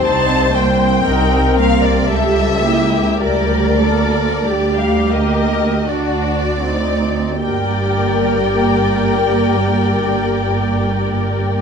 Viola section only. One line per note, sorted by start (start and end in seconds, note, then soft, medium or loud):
0.03 0.51 C4 soft
0.03 0.51 D#4 soft
0.54 1.06 A#3 soft
0.54 1.04 C4 soft
1.05 1.55 C4 soft
1.05 1.57 D#4 soft
1.56 2.10 A#3 soft
1.56 2.10 C4 soft
2.10 2.61 G3 soft
2.10 2.61 G4 soft
2.65 3.22 A#3 soft
2.65 3.22 E4 soft
3.22 3.78 G3 soft
3.22 3.78 G4 soft
3.81 4.45 A#3 soft
3.81 4.45 A#4 soft
4.45 5.14 G3 soft
4.45 5.14 G4 soft
5.13 5.87 A#3 soft
5.13 5.87 A#4 soft
5.87 6.63 D4 soft
5.87 6.63 F#4 soft
6.67 7.43 C4 soft
6.67 7.43 D#4 soft
7.44 11.61 A#3 soft
7.44 11.61 G4 soft